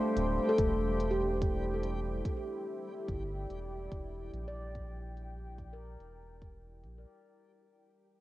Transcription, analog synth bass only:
0.17 0.39 D1 medium
0.59 2.22 E1 medium
3.09 3.46 G1 medium
3.50 3.88 E1 medium
3.92 4.29 E1 medium
4.33 5.97 A#1 medium
6.00 6.85 E1 medium
6.83 7.05 A#1 medium

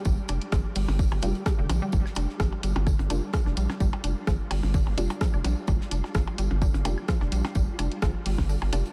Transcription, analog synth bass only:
0.05 0.15 G1 loud
0.29 0.39 F1 medium
0.52 0.62 G1 medium
0.76 0.86 G1 medium
0.88 1.06 G1 medium
1.12 1.20 G1 loud
1.23 1.32 F1 medium
1.59 1.67 F1 medium
1.69 1.79 A#1 medium
1.93 2.03 G1 loud
2.16 2.26 F1 medium
2.40 2.50 G1 medium
2.63 2.73 G1 medium
2.76 2.94 G1 medium
2.99 3.08 G1 loud
3.10 3.20 F1 medium
3.46 3.55 F1 medium
3.57 3.67 A#1 loud
3.80 3.90 G1 loud
4.04 4.14 F1 medium
4.27 4.37 G1 medium
4.51 4.61 G1 medium
4.63 4.81 G1 medium
4.87 4.95 G1 loud
4.98 5.07 F1 medium
5.34 5.42 F1 medium
5.45 5.54 A#1 loud
5.68 5.78 G1 loud
5.91 6.01 F1 medium
6.15 6.25 G1 medium
6.38 6.48 G1 medium
6.51 6.69 G1 medium
6.74 6.83 G1 loud
6.85 6.95 F1 medium
7.21 7.30 F1 medium
7.32 7.42 A#1 loud
7.55 7.65 G1 loud
7.79 7.89 F1 medium
8.02 8.12 G1 loud
8.26 8.36 G1 medium
8.38 8.56 G1 medium
8.62 8.70 G1 loud
8.73 8.83 F1 medium

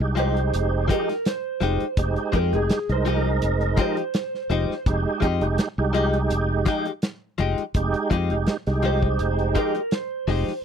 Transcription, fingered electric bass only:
0.00 0.50 C2 medium
0.53 0.87 F1 medium
1.61 1.80 F1 medium
1.82 muted fingered electric bass stroke soft
1.97 2.16 F1 medium
2.33 2.52 F2 medium
2.53 2.69 F1 medium
2.89 3.39 C2 medium
3.42 3.76 F1 medium
4.50 4.68 F1 medium
4.69 muted fingered electric bass stroke soft
4.86 5.05 F1 medium
5.22 5.40 F2 medium
5.41 5.57 F1 medium
5.78 6.28 C2 medium
6.30 6.65 F1 medium
7.39 7.57 F1 medium
7.75 7.93 F1 loud
8.11 8.29 F2 medium
8.31 8.46 F1 medium
8.67 9.17 C2 medium
9.20 9.54 F1 medium
10.27 10.46 F1 medium
10.48 muted fingered electric bass stroke soft

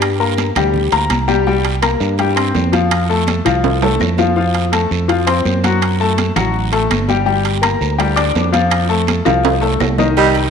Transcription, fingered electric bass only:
0.00 0.50 G2 medium
0.56 0.90 D2 loud
0.92 1.09 D2 medium
1.09 1.95 C2 medium
2.00 2.51 G2 loud
2.55 3.40 F2 loud
3.46 3.97 C2 loud
4.00 4.85 F2 medium
4.91 5.41 F2 medium
5.45 6.30 F#2 medium
6.36 6.86 A1 loud
6.90 7.75 G1 medium
7.81 8.31 D2 loud
8.35 9.20 F2 medium
9.26 9.77 C2 loud
9.81 10.50 C2 medium

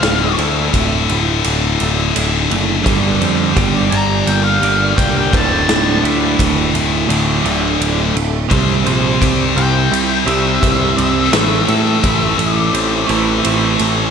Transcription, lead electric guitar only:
0.00 0.34 F5 medium
3.91 4.28 A#5 medium
4.27 4.43 G5 medium
4.44 4.94 F5 medium
4.97 5.16 G5 medium
5.18 5.35 G5 medium
5.36 6.01 A5 medium
9.57 10.23 G5 loud
10.27 10.96 E5 loud
10.97 12.53 E5 medium
12.53 13.40 D5 medium

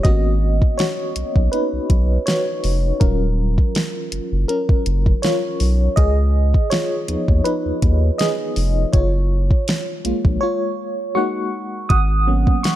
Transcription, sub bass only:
0.05 0.61 G#1 loud
1.16 1.24 B1 soft
1.36 1.49 B1 loud
1.73 1.80 B1 medium
1.90 2.18 B1 loud
2.64 2.92 F1 medium
3.01 3.58 D#1 loud
4.12 4.20 F#1 soft
4.32 4.45 F#1 medium
4.69 4.76 F#1 medium
4.86 5.15 F#1 medium
5.60 5.89 B1 medium
5.97 6.54 C#2 loud
7.09 7.17 D#2 soft
7.28 7.41 D#2 medium
7.66 7.72 D#2 soft
7.82 8.11 D#2 medium
8.57 8.85 F1 loud
8.94 9.50 F#1 loud
10.05 10.13 A#1 soft
10.25 10.38 A#1 medium
11.90 12.47 G#1 loud

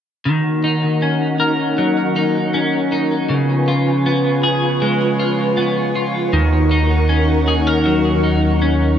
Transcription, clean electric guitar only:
0.25 3.29 D#3 medium
0.64 2.15 D#4 soft
1.02 2.54 C#4 soft
1.40 3.37 A#4 medium
1.78 3.38 F#3 medium
2.16 2.91 D#4 soft
2.54 4.06 C#4 soft
2.92 3.38 D#4 soft
3.29 6.33 C#3 medium
3.68 5.18 F4 soft
4.06 5.56 B3 soft
4.43 6.41 G#4 medium
4.82 6.41 G#3 medium
5.19 5.94 F4 soft
5.57 6.41 B3 medium
5.95 6.41 F4 soft
6.33 8.99 D#3 medium
6.71 8.22 D#4 medium
7.09 8.61 C#4 soft
7.48 7.67 G#4 soft
7.67 8.99 A#4 soft
7.86 8.99 F#3 medium
8.23 8.98 D#4 soft
8.62 8.99 C#4 medium

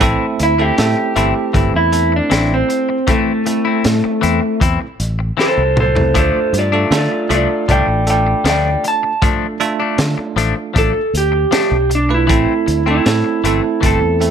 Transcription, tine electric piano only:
0.00 0.53 A3 medium
0.00 0.53 C4 medium
0.00 0.54 E4 medium
0.00 0.53 A4 loud
0.59 0.76 A3 medium
0.59 0.76 C4 medium
0.59 0.76 E4 medium
0.59 0.76 A4 medium
0.78 1.13 A3 medium
0.78 1.13 C4 medium
0.78 1.13 E4 medium
0.78 1.13 A4 medium
1.16 1.51 A3 medium
1.16 1.51 C4 medium
1.16 1.51 E4 medium
1.16 1.51 A4 medium
1.54 1.89 A3 medium
1.54 1.89 C4 medium
1.54 1.89 E4 medium
1.54 1.89 A4 medium
1.92 2.97 A3 medium
1.92 2.97 C4 medium
1.92 2.97 E4 medium
1.92 2.97 A4 medium
3.08 3.43 A3 medium
3.08 3.43 C4 medium
3.08 3.43 E4 medium
3.08 3.43 A4 medium
3.47 4.86 A3 medium
3.47 4.86 C4 medium
3.47 4.86 E4 medium
3.47 4.86 A4 medium
5.96 6.13 A3 medium
5.96 6.13 C4 medium
5.96 6.13 E4 medium
5.96 6.13 A4 medium
6.14 6.67 A3 medium
6.14 6.67 D4 medium
6.14 6.67 F4 medium
6.14 6.67 A4 medium
6.73 6.90 A3 medium
6.73 6.90 D4 medium
6.73 6.90 F4 medium
6.73 6.90 A4 medium
6.91 7.27 A3 medium
6.91 7.26 D4 medium
6.91 7.27 F4 medium
6.91 7.27 A4 medium
7.29 7.65 A3 medium
7.29 7.65 D4 medium
7.29 7.65 F4 medium
7.29 7.65 A4 medium
7.69 8.04 A3 medium
7.69 8.04 D4 medium
7.69 8.04 F4 medium
7.69 8.04 A4 medium
8.07 9.12 A3 medium
8.07 9.12 D4 medium
8.07 9.12 F4 medium
8.07 9.12 A4 medium
9.22 9.57 A3 medium
9.22 9.57 D4 medium
9.22 9.57 F4 medium
9.22 9.57 A4 medium
9.60 11.00 A3 medium
9.60 11.00 D4 medium
9.60 11.00 F4 medium
9.60 11.00 A4 medium
12.10 12.27 A3 medium
12.10 12.28 D4 medium
12.10 12.28 F4 medium
12.10 12.28 B4 medium
12.30 12.82 A3 medium
12.30 12.82 C4 medium
12.30 12.82 E4 medium
12.30 12.82 A4 medium
12.87 13.04 A3 medium
12.87 13.04 C4 medium
12.87 13.04 E4 medium
12.87 13.05 A4 medium
13.06 13.41 A3 medium
13.06 13.41 C4 medium
13.06 13.41 E4 medium
13.06 13.41 A4 medium
13.45 13.80 A3 medium
13.45 13.80 C4 medium
13.45 13.80 E4 medium
13.45 13.80 A4 medium
13.83 14.18 A3 medium
13.83 14.18 C4 medium
13.83 14.18 E4 medium
13.83 14.18 A4 medium
14.20 14.31 A3 medium
14.20 14.31 C4 medium
14.20 14.31 E4 medium
14.20 14.31 A4 medium

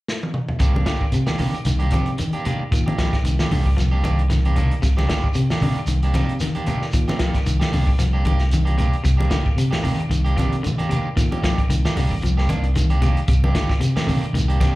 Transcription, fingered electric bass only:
0.60 0.83 C2 medium
1.00 muted fingered electric bass stroke soft
1.12 1.25 C3 medium
1.39 1.52 C3 medium
1.65 1.89 C2 medium
1.92 2.15 C3 medium
2.71 2.95 A#2 medium
3.24 3.37 C2 medium
3.50 3.74 C2 medium
3.78 4.69 C2 medium
4.83 5.06 C2 medium
5.23 muted fingered electric bass stroke soft
5.35 5.48 C3 medium
5.61 5.74 C3 medium
5.87 6.11 C2 medium
6.14 6.37 C3 medium
6.94 7.17 A#2 medium
7.46 7.59 C2 loud
7.72 7.96 C2 medium
7.99 8.91 C2 medium
9.05 9.28 C2 medium
9.45 muted fingered electric bass stroke soft
9.56 9.70 C3 medium
9.84 9.97 C3 medium
10.09 10.33 C2 medium
10.38 10.61 C3 medium
11.16 11.40 A#2 medium
11.69 11.82 C2 loud
11.97 12.19 C2 medium
12.22 13.14 C2 medium
13.28 13.51 C2 medium
13.69 muted fingered electric bass stroke soft
13.80 13.93 C3 medium
14.07 14.20 C3 medium
14.33 14.56 C2 medium
14.60 14.75 C3 medium

